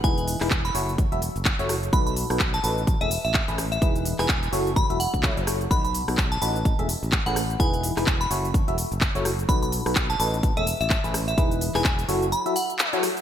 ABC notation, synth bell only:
X:1
M:4/4
L:1/16
Q:"Swing 16ths" 1/4=127
K:F#dor
V:1 name="Synth bell"
g2 z3 b z8 z2 | b b z3 a a2 z e2 e2 z2 e | z3 g2 z3 b2 f3 z3 | b b z3 a a2 z4 z f2 z |
g2 z3 b z8 z2 | b b z3 a a2 z e2 e2 z2 e | z3 g2 z3 b2 f3 z3 |]